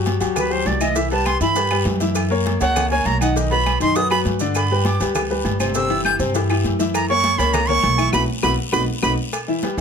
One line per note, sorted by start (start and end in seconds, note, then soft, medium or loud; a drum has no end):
0.00 0.15 G2 medium
0.00 0.15 F#3 medium
0.00 0.16 F#4 medium
0.00 0.16 G4 medium
0.06 cowbell medium
0.06 high conga medium
0.06 low agogo medium
0.06 short guiro medium
0.06 maracas soft
0.20 0.63 D2 medium
0.20 0.45 F#3 medium
0.20 0.45 F#4 medium
0.20 0.46 G4 medium
0.20 cowbell medium
0.20 high conga soft
0.20 low agogo medium
0.20 short guiro medium
0.20 maracas medium
0.36 0.53 B4 medium
0.36 cowbell loud
0.36 high conga soft
0.36 low conga medium
0.36 low agogo loud
0.36 long guiro medium
0.36 claves medium
0.36 maracas medium
0.50 0.75 F#3 medium
0.50 0.75 F#4 medium
0.50 0.75 G4 medium
0.50 0.68 C5 medium
0.50 high conga soft
0.50 maracas soft
0.65 1.35 C2 medium
0.65 0.83 D5 medium
0.65 cowbell medium
0.65 high conga medium
0.65 low timbale medium
0.65 low agogo medium
0.65 short guiro medium
0.65 maracas soft
0.80 0.93 E3 medium
0.80 0.93 E4 medium
0.80 0.97 D#5 medium
0.80 0.93 E5 medium
0.80 high conga medium
0.80 low agogo loud
0.80 short guiro medium
0.80 claves medium
0.80 maracas medium
0.95 1.08 E3 medium
0.95 1.08 E4 medium
0.95 1.10 E5 medium
0.95 1.08 E5 medium
0.95 cowbell medium
0.95 high conga soft
0.95 long guiro medium
0.95 maracas medium
1.11 1.36 G3 medium
1.11 1.36 G4 medium
1.11 1.36 B4 medium
1.11 1.28 A5 loud
1.11 high conga soft
1.11 low agogo medium
1.11 maracas soft
1.26 1.41 C6 loud
1.26 cowbell medium
1.26 high conga medium
1.26 low agogo loud
1.26 short guiro medium
1.26 claves medium
1.26 maracas soft
1.40 1.83 G2 loud
1.40 1.53 E3 medium
1.40 1.53 E4 medium
1.40 1.53 E5 medium
1.40 1.83 B5 loud
1.40 high conga soft
1.40 short guiro medium
1.40 maracas medium
1.55 1.68 G3 medium
1.55 1.68 G4 medium
1.55 1.68 B4 medium
1.55 cowbell loud
1.55 high conga soft
1.55 low agogo medium
1.55 long guiro medium
1.55 maracas medium
1.71 1.96 G3 medium
1.71 1.96 G4 medium
1.71 1.96 B4 medium
1.71 cowbell medium
1.71 high conga soft
1.71 low agogo loud
1.71 claves medium
1.71 maracas soft
1.85 2.55 F#2 loud
1.85 cowbell medium
1.85 high conga medium
1.85 low timbale medium
1.85 short guiro medium
1.85 maracas soft
2.00 2.25 E3 medium
2.00 2.25 E4 medium
2.00 2.25 E5 medium
2.00 cowbell medium
2.00 high conga medium
2.00 short guiro medium
2.00 maracas medium
2.15 cowbell medium
2.15 high conga soft
2.15 low agogo loud
2.15 long guiro medium
2.15 claves medium
2.15 maracas medium
2.30 2.55 A#3 medium
2.30 2.55 A#4 medium
2.30 2.56 C#5 medium
2.30 high conga soft
2.30 maracas soft
2.45 cowbell medium
2.45 high conga loud
2.45 low agogo medium
2.45 short guiro medium
2.45 maracas soft
2.60 3.03 C#2 loud
2.60 2.86 A#3 medium
2.60 2.86 A#4 medium
2.60 2.86 C#5 medium
2.60 2.89 F#5 loud
2.60 cowbell medium
2.60 low agogo medium
2.60 short guiro medium
2.60 maracas medium
2.76 cowbell loud
2.76 high conga soft
2.76 low conga medium
2.76 low agogo loud
2.76 long guiro medium
2.76 claves medium
2.76 maracas loud
2.91 3.16 A#3 medium
2.91 3.16 A#4 medium
2.91 3.16 C#5 medium
2.91 3.07 G#5 medium
2.91 high conga soft
2.91 maracas soft
3.05 3.75 B1 loud
3.05 3.21 A#5 medium
3.05 cowbell medium
3.05 high conga medium
3.05 low agogo medium
3.05 short guiro medium
3.05 maracas soft
3.21 3.33 D#3 medium
3.21 3.33 D#4 medium
3.21 3.34 D#5 medium
3.21 3.35 F#5 medium
3.21 low agogo loud
3.21 short guiro medium
3.21 claves medium
3.21 maracas medium
3.36 3.49 D#3 medium
3.36 3.49 D#4 medium
3.36 3.49 D#5 medium
3.36 cowbell medium
3.36 high conga soft
3.36 long guiro medium
3.36 maracas medium
3.51 3.76 F#3 medium
3.51 3.76 F#4 medium
3.51 3.76 B4 medium
3.51 3.79 B5 medium
3.51 high conga soft
3.51 low agogo medium
3.51 maracas soft
3.66 cowbell medium
3.66 high conga medium
3.66 low agogo loud
3.66 short guiro medium
3.66 claves medium
3.66 maracas soft
3.80 4.22 F#2 medium
3.80 3.93 D#3 medium
3.80 3.94 D#4 medium
3.80 3.94 D#5 medium
3.80 3.97 C6 loud
3.80 high conga soft
3.80 short guiro medium
3.80 maracas medium
3.96 4.08 F#3 medium
3.96 4.08 F#4 medium
3.96 4.09 B4 medium
3.96 4.10 D#6 loud
3.96 cowbell loud
3.96 high conga soft
3.96 low agogo medium
3.96 long guiro medium
3.96 maracas medium
4.10 4.35 F#3 medium
4.10 4.35 F#4 medium
4.10 4.36 B4 medium
4.10 4.20 B5 loud
4.10 cowbell medium
4.10 high conga soft
4.10 low agogo loud
4.10 claves medium
4.10 maracas soft
4.25 4.95 G2 loud
4.25 cowbell medium
4.25 high conga medium
4.25 short guiro medium
4.25 maracas soft
4.39 4.65 D3 medium
4.39 4.65 D4 medium
4.39 4.65 D5 medium
4.39 cowbell medium
4.39 high conga medium
4.39 short guiro medium
4.39 maracas medium
4.55 4.87 B5 medium
4.55 cowbell medium
4.55 high conga soft
4.55 low agogo loud
4.55 long guiro medium
4.55 claves medium
4.55 maracas medium
4.70 4.95 G3 medium
4.70 4.96 G4 medium
4.70 4.96 B4 medium
4.70 maracas soft
4.85 5.01 D6 medium
4.85 cowbell medium
4.85 high conga medium
4.85 low agogo medium
4.85 short guiro medium
4.85 maracas soft
5.00 5.42 D2 medium
5.00 5.25 G3 medium
5.00 5.25 G4 medium
5.00 5.25 B4 medium
5.00 cowbell medium
5.00 high conga soft
5.00 low agogo medium
5.00 short guiro medium
5.00 maracas medium
5.15 cowbell loud
5.15 high conga soft
5.15 low conga medium
5.15 low agogo loud
5.15 long guiro medium
5.15 claves medium
5.15 maracas medium
5.30 5.55 G3 medium
5.30 5.55 G4 medium
5.30 5.55 B4 medium
5.30 high conga soft
5.30 maracas soft
5.44 6.14 G1 loud
5.44 cowbell medium
5.44 high conga medium
5.44 low timbale medium
5.44 low agogo medium
5.44 short guiro medium
5.44 maracas soft
5.60 5.72 C3 medium
5.60 5.72 C4 medium
5.60 5.73 C5 medium
5.60 high conga medium
5.60 low agogo loud
5.60 short guiro medium
5.60 claves medium
5.60 maracas medium
5.74 5.87 C3 medium
5.74 5.87 C4 medium
5.74 5.87 C5 medium
5.74 6.03 E6 medium
5.74 cowbell medium
5.74 high conga soft
5.74 long guiro medium
5.74 maracas medium
5.89 6.14 E3 medium
5.89 6.14 E4 medium
5.89 6.15 G4 medium
5.89 high conga soft
5.89 low agogo medium
5.89 maracas soft
6.04 6.14 G6 loud
6.04 cowbell medium
6.04 high conga medium
6.04 low agogo loud
6.04 short guiro medium
6.04 claves medium
6.04 maracas soft
6.19 6.61 G2 loud
6.19 6.32 C3 medium
6.19 6.32 C4 loud
6.19 6.32 C5 medium
6.19 high conga soft
6.19 short guiro medium
6.19 maracas medium
6.34 6.47 E3 medium
6.34 6.47 E4 medium
6.34 6.47 G4 medium
6.34 cowbell loud
6.34 high conga soft
6.34 low agogo medium
6.34 long guiro medium
6.34 maracas loud
6.49 6.74 E3 medium
6.49 6.74 E4 medium
6.49 6.74 G4 medium
6.49 cowbell medium
6.49 high conga soft
6.49 low agogo loud
6.49 claves medium
6.49 maracas soft
6.64 7.34 F#2 medium
6.64 cowbell medium
6.64 high conga medium
6.64 short guiro medium
6.64 maracas soft
6.79 7.04 E3 medium
6.79 7.04 E4 medium
6.79 7.04 E5 medium
6.79 cowbell medium
6.79 high conga medium
6.79 short guiro medium
6.79 maracas medium
6.94 7.09 A#5 medium
6.94 cowbell medium
6.94 high conga soft
6.94 low agogo loud
6.94 long guiro medium
6.94 claves medium
6.94 maracas loud
7.09 7.34 A#3 medium
7.09 7.34 A#4 medium
7.09 7.34 C#5 medium
7.09 7.40 C#6 loud
7.09 high conga soft
7.09 maracas soft
7.24 cowbell medium
7.24 high conga loud
7.24 low agogo medium
7.24 short guiro medium
7.24 maracas soft
7.38 7.80 C#2 loud
7.38 7.63 A#3 medium
7.38 7.64 A#4 medium
7.38 7.64 C#5 medium
7.38 7.55 B5 loud
7.38 cowbell medium
7.38 high conga soft
7.38 low agogo medium
7.38 short guiro medium
7.38 maracas medium
7.53 7.70 A#5 loud
7.53 cowbell loud
7.53 high conga soft
7.53 low conga medium
7.53 low agogo loud
7.53 long guiro medium
7.53 claves medium
7.53 maracas medium
7.68 7.93 A#3 medium
7.68 7.94 A#4 medium
7.68 7.94 C#5 medium
7.68 8.13 C#6 loud
7.68 high conga soft
7.68 low conga medium
7.68 maracas soft
7.83 8.11 B1 loud
7.83 cowbell medium
7.83 high conga medium
7.83 low agogo medium
7.83 short guiro medium
7.83 maracas soft
7.98 8.11 E3 medium
7.98 8.11 E4 medium
7.98 8.11 E5 medium
7.98 high conga medium
7.98 low agogo loud
7.98 short guiro medium
7.98 claves medium
7.98 maracas medium
8.12 8.25 B1 loud
8.12 8.23 B3 loud
8.12 8.23 E4 medium
8.12 8.23 F#4 loud
8.12 8.23 B5 loud
8.12 cowbell medium
8.12 high conga loud
8.12 high timbale loud
8.12 long guiro loud
8.12 claves loud
8.12 maracas loud
8.43 8.55 B1 medium
8.43 8.53 B3 medium
8.43 8.53 E4 loud
8.43 8.53 F#4 loud
8.43 8.53 B5 loud
8.43 cowbell loud
8.43 high conga loud
8.43 high timbale loud
8.43 claves loud
8.43 maracas loud
8.72 8.85 B1 loud
8.72 8.82 B3 loud
8.72 8.82 D#4 loud
8.72 8.82 F#4 loud
8.72 8.82 B5 loud
8.72 cowbell loud
8.72 high conga loud
8.72 high timbale loud
8.72 claves medium
8.72 maracas loud
9.02 9.14 B1 loud
9.02 9.12 B3 loud
9.02 9.12 D#4 loud
9.02 9.12 F#4 loud
9.02 9.13 B5 loud
9.02 cowbell medium
9.02 high conga loud
9.02 high timbale loud
9.02 long guiro loud
9.02 claves loud
9.02 maracas loud
9.33 cowbell medium
9.33 high conga soft
9.33 low agogo medium
9.33 long guiro medium
9.33 claves medium
9.33 maracas medium
9.48 9.60 E3 medium
9.48 9.60 E4 medium
9.48 9.60 E5 medium
9.48 high conga soft
9.48 maracas soft
9.62 9.75 G3 medium
9.62 9.75 G4 medium
9.62 9.75 B4 medium
9.62 cowbell medium
9.62 high conga loud
9.62 low agogo medium
9.62 short guiro medium
9.62 maracas soft
9.77 9.81 B1 medium
9.77 9.81 E3 medium
9.77 high conga soft